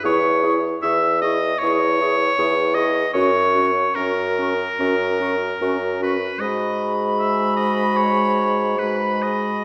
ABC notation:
X:1
M:4/4
L:1/8
Q:1/4=75
K:F#mix
V:1 name="Flute"
c' c' c' c' c' c' c' c' | c' c' c' c' c' c' c' c' | b6 b2 |]
V:2 name="Oboe"
c z e d c3 d | c2 A4- A B | d z e d c2 B d |]
V:3 name="Clarinet"
G G G G G G G G | F F F F F F F F | F6 F2 |]
V:4 name="French horn"
E E E E E E E E | C C C C C C C C | G,6 G,2 |]
V:5 name="Bassoon" clef=bass
E,,2 E,,2 E,,2 E,,2 | F,,2 F,,2 F,,2 F,,2 | G,,8 |]